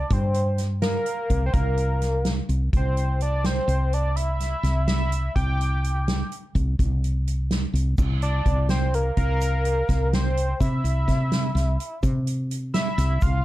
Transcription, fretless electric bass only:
0.10 0.96 G2 medium
1.30 1.51 C2 medium
1.54 2.39 C2 medium
2.49 2.70 C2 medium
2.73 3.59 C2 medium
3.68 4.54 C2 medium
4.63 5.28 C2 medium
5.36 6.21 C2 medium
6.55 6.76 C2 medium
6.79 7.64 C2 medium
7.74 7.95 C2 medium
7.98 8.41 C2 loud
8.46 9.10 C2 medium
9.17 9.81 C2 medium
9.89 10.53 C2 medium
10.60 10.82 C3 medium
10.84 11.05 C2 medium
11.08 11.50 C3 medium
11.55 11.76 C2 medium
12.03 12.88 C3 medium
12.98 13.19 C2 medium
13.22 13.45 C2 loud

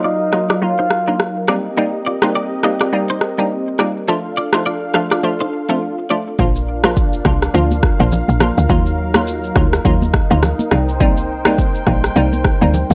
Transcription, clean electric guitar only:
0.04 0.16 F4 medium
0.04 0.16 D5 medium
0.33 0.45 F#4 medium
0.33 0.44 D#5 medium
0.50 0.58 F4 medium
0.50 0.58 D5 medium
0.79 0.87 D#4 medium
0.79 0.87 C5 medium
1.08 1.16 D4 medium
1.08 1.16 A#4 medium
1.49 1.60 G4 medium
1.49 1.60 D5 medium
1.78 1.89 D#4 medium
1.78 1.89 A#4 loud
2.06 2.18 F4 medium
2.06 2.18 D5 medium
2.23 2.32 D#4 medium
2.23 2.31 C5 medium
2.35 2.47 G4 medium
2.35 2.46 D5 medium
2.64 2.76 G4 medium
2.64 2.75 D#5 medium
2.81 2.89 F4 medium
2.81 2.89 D5 medium
3.10 3.18 D#4 medium
3.10 3.18 C5 medium
3.39 3.47 D4 medium
3.39 3.47 A#4 medium
3.80 3.91 F4 medium
3.80 3.91 D5 medium
4.08 4.20 D4 medium
4.08 4.20 A4 loud
4.37 4.49 F4 medium
4.37 4.48 D5 medium
4.54 4.63 D#4 medium
4.54 4.62 C5 medium
4.66 4.78 F4 medium
4.66 4.77 D5 medium
4.95 5.07 A4 medium
4.95 5.06 F5 medium
5.12 5.20 F4 medium
5.12 5.20 D5 medium
5.41 5.49 D#4 medium
5.41 5.49 C5 medium
5.70 5.78 C4 medium
5.70 5.77 A4 medium
6.10 6.22 F4 medium
6.10 6.22 D5 medium

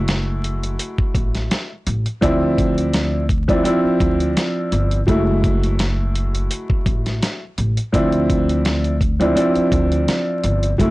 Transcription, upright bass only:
0.00 0.75 F#1 loud
0.99 muted upright bass stroke soft
1.15 1.47 A1 medium
1.87 2.04 A1 medium
2.22 3.61 D2 loud
3.85 muted upright bass stroke soft
4.00 4.33 D2 medium
4.72 5.05 G1 medium
5.08 6.47 F#1 loud
6.70 muted upright bass stroke soft
6.86 7.19 A1 medium
7.58 7.76 A1 medium
7.94 9.33 D2 loud
9.56 muted upright bass stroke soft
9.72 10.05 D2 medium
10.44 10.76 G1 medium
10.79 10.90 F#1 loud

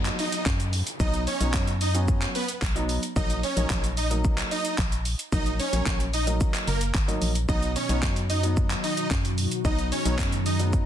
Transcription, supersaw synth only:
0.19 0.43 D#4 medium
0.19 0.42 D#5 medium
1.00 1.24 D#4 medium
1.00 1.23 D#5 loud
1.27 1.66 C#4 medium
1.27 1.65 C#5 medium
1.81 1.93 D#4 medium
1.81 1.93 D#5 medium
2.35 2.47 B3 medium
2.35 2.47 B4 medium
3.16 3.40 D#4 medium
3.16 3.39 D#5 loud
3.43 3.82 C#4 medium
3.43 3.81 C#5 medium
3.97 4.09 D#4 medium
3.97 4.09 D#5 medium
4.51 4.75 D#4 medium
4.51 4.74 D#5 medium
5.32 5.56 D#4 medium
5.32 5.55 D#5 loud
5.59 5.98 C#4 medium
5.59 5.98 C#5 medium
6.14 6.26 D#4 medium
6.14 6.25 D#5 medium
6.68 6.80 A#3 medium
6.68 6.79 A#4 medium
7.49 7.72 D#4 medium
7.49 7.72 D#5 loud
7.76 8.14 C#4 medium
7.76 8.14 C#5 medium
8.30 8.42 D#4 medium
8.30 8.41 D#5 medium
8.84 9.07 D#4 medium
8.84 9.07 D#5 medium
9.65 9.88 D#4 medium
9.65 9.88 D#5 loud
9.92 10.30 C#4 medium
9.92 10.30 C#5 medium
10.46 10.58 D#4 medium
10.46 10.58 D#5 medium

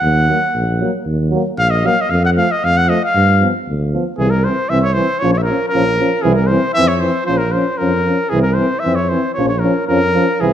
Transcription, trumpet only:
0.00 1.05 F#5 medium
1.59 1.72 F5 loud
1.71 1.87 D#5 medium
1.86 2.02 F5 loud
2.01 2.12 D#5 medium
2.10 2.24 F5 medium
2.25 2.30 F#5 medium
2.37 2.53 F5 medium
2.52 2.66 D#5 medium
2.64 2.79 F5 loud
2.77 2.91 F#5 loud
2.89 3.03 D#5 medium
3.04 3.52 F5 loud
4.18 4.32 G#4 medium
4.30 4.46 A#4 medium
4.44 4.71 C5 medium
4.69 4.81 E5 loud
4.81 4.95 C#5 medium
4.81 4.85 E5 medium
4.94 5.21 C5 medium
5.19 5.33 C#5 medium
5.34 5.39 C#5 medium
5.38 5.40 E5 medium
5.43 5.68 A#4 medium
5.69 6.24 A#4 loud
6.22 6.34 G#4 medium
6.35 6.48 A#4 medium
6.47 6.73 C5 medium
6.74 6.89 E5 loud
6.88 7.01 C#5 medium
7.00 7.26 C5 medium
7.26 7.39 C5 medium
7.38 7.54 A#4 medium
7.52 7.79 C5 medium
7.78 8.31 A#4 loud
8.29 8.42 G#4 medium
8.43 8.55 A#4 medium
8.54 8.81 C5 medium
8.79 8.97 E5 medium
8.95 9.11 C#5 medium
9.09 9.33 C5 medium
9.34 9.48 C#5 medium
9.49 9.61 C#5 medium
9.59 9.87 A#4 medium
9.88 10.42 A#4 loud
10.41 10.53 G#4 medium

